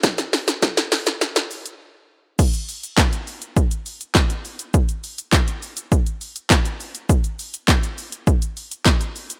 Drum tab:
CC |----------------|x---------------|----------------|----------------|
HH |-xox-xox-xox----|-xox-xox-xox-xox|-xox-xox-xox-xox|-xox-xox-xox-xox|
SH |xxxxxxxxxxxx----|xxxxxxxxxxxxxxxx|xxxxxxxxxxxxxxxx|xxxxxxxxxxxxxxxx|
CP |----------------|----x-------x---|----x-------x---|----x-------x---|
SD |oooooooooo------|----o-------o---|----o-------o---|----o-------o---|
BD |o---o-----------|o---o---o---o---|o---o---o---o---|o---o---o---o---|